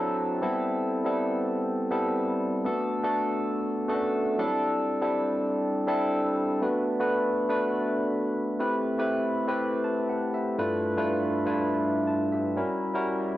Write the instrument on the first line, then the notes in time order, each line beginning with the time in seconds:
tine electric piano
Already playing: F#3 C4 D4 E4 A4
0.42 G3 B3 C4 E4 A4
1.05 G3 B3 C4 E4 A4
1.91 G3 B3 C4 E4 A4
2.65 A3 B3 D4 F#4 A4
3.03 A3 B3 D4 F#4 A4
3.88 A3 B3 C#4 F#4 A4
3.95 D4
4.38 F#3 C4 D4 E4 A4
4.44 G3
5.01 G3 C4 D4 E4 A4
5.87 G3 C4 D4 E4 A4
6.62 A3 B3 D4 F#4 B4
6.99 A3 B3 D4 F#4 B4
7.49 A3 B3 D4 F#4 B4
8.59 A3 C4 E4 G4 B4
8.98 A3 C4 E4 G4 B4
9.47 A3 C4 E4 G4 B4
9.84 A5
10.09 F#5
10.34 E5
10.58 G2 A3 D4 E4 F4 B4
10.97 G2 A3 D4 E4 F4 B4
11.45 G2 A3 D4 E4 F4 B4
12.07 A5
12.32 G4 E5
12.56 G3 C#4 E4 F#4 A#4
12.94 G3 C#4 E4 F#4 A#4